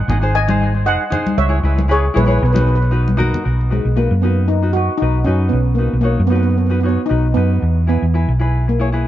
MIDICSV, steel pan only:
0, 0, Header, 1, 2, 480
1, 0, Start_track
1, 0, Key_signature, 5, "major"
1, 0, Tempo, 520833
1, 1275, Time_signature, 4, 2, 24, 8
1, 8365, End_track
2, 0, Start_track
2, 0, Title_t, "Steel pan"
2, 0, Program_c, 0, 114
2, 0, Note_on_c, 0, 75, 82
2, 0, Note_on_c, 0, 78, 104
2, 290, Note_off_c, 0, 75, 0
2, 323, Note_on_c, 0, 80, 110
2, 327, Note_on_c, 0, 75, 80
2, 348, Note_off_c, 0, 78, 0
2, 768, Note_off_c, 0, 75, 0
2, 793, Note_on_c, 0, 75, 78
2, 796, Note_on_c, 0, 78, 97
2, 813, Note_off_c, 0, 80, 0
2, 1239, Note_off_c, 0, 75, 0
2, 1271, Note_on_c, 0, 76, 98
2, 1275, Note_on_c, 0, 73, 72
2, 1288, Note_off_c, 0, 78, 0
2, 1719, Note_off_c, 0, 73, 0
2, 1762, Note_on_c, 0, 73, 94
2, 1765, Note_off_c, 0, 76, 0
2, 1770, Note_on_c, 0, 68, 82
2, 1980, Note_off_c, 0, 73, 0
2, 1984, Note_off_c, 0, 68, 0
2, 1996, Note_on_c, 0, 68, 56
2, 1997, Note_on_c, 0, 71, 75
2, 2060, Note_off_c, 0, 68, 0
2, 2060, Note_off_c, 0, 71, 0
2, 2075, Note_on_c, 0, 71, 59
2, 2113, Note_off_c, 0, 71, 0
2, 2124, Note_on_c, 0, 71, 59
2, 2185, Note_off_c, 0, 71, 0
2, 2196, Note_on_c, 0, 71, 46
2, 2251, Note_off_c, 0, 71, 0
2, 2262, Note_on_c, 0, 71, 54
2, 2316, Note_off_c, 0, 71, 0
2, 2327, Note_on_c, 0, 71, 51
2, 2390, Note_off_c, 0, 71, 0
2, 2401, Note_on_c, 0, 71, 54
2, 2451, Note_off_c, 0, 71, 0
2, 2463, Note_on_c, 0, 71, 58
2, 2527, Note_off_c, 0, 71, 0
2, 2538, Note_on_c, 0, 71, 66
2, 2605, Note_off_c, 0, 71, 0
2, 3431, Note_on_c, 0, 56, 60
2, 3656, Note_on_c, 0, 58, 82
2, 3676, Note_off_c, 0, 56, 0
2, 3889, Note_on_c, 0, 59, 64
2, 3909, Note_off_c, 0, 58, 0
2, 4120, Note_off_c, 0, 59, 0
2, 4129, Note_on_c, 0, 63, 77
2, 4360, Note_on_c, 0, 66, 83
2, 4386, Note_off_c, 0, 63, 0
2, 4474, Note_off_c, 0, 66, 0
2, 4586, Note_on_c, 0, 63, 85
2, 4832, Note_on_c, 0, 61, 76
2, 4855, Note_off_c, 0, 63, 0
2, 5060, Note_on_c, 0, 59, 70
2, 5073, Note_off_c, 0, 61, 0
2, 5297, Note_on_c, 0, 58, 61
2, 5333, Note_off_c, 0, 59, 0
2, 5528, Note_off_c, 0, 58, 0
2, 5539, Note_on_c, 0, 58, 76
2, 5778, Note_on_c, 0, 59, 78
2, 5813, Note_off_c, 0, 58, 0
2, 5845, Note_off_c, 0, 59, 0
2, 5856, Note_on_c, 0, 59, 56
2, 5914, Note_off_c, 0, 59, 0
2, 5925, Note_on_c, 0, 59, 57
2, 5976, Note_off_c, 0, 59, 0
2, 5988, Note_on_c, 0, 59, 47
2, 6049, Note_off_c, 0, 59, 0
2, 6060, Note_on_c, 0, 59, 53
2, 6130, Note_off_c, 0, 59, 0
2, 6141, Note_on_c, 0, 59, 43
2, 6196, Note_off_c, 0, 59, 0
2, 6207, Note_on_c, 0, 59, 47
2, 6260, Note_off_c, 0, 59, 0
2, 6271, Note_on_c, 0, 59, 50
2, 6334, Note_off_c, 0, 59, 0
2, 6345, Note_on_c, 0, 59, 60
2, 6430, Note_off_c, 0, 59, 0
2, 6504, Note_on_c, 0, 63, 79
2, 6624, Note_off_c, 0, 63, 0
2, 6767, Note_on_c, 0, 59, 78
2, 7261, Note_off_c, 0, 59, 0
2, 7272, Note_on_c, 0, 59, 68
2, 7722, Note_off_c, 0, 59, 0
2, 8008, Note_on_c, 0, 58, 70
2, 8365, Note_off_c, 0, 58, 0
2, 8365, End_track
0, 0, End_of_file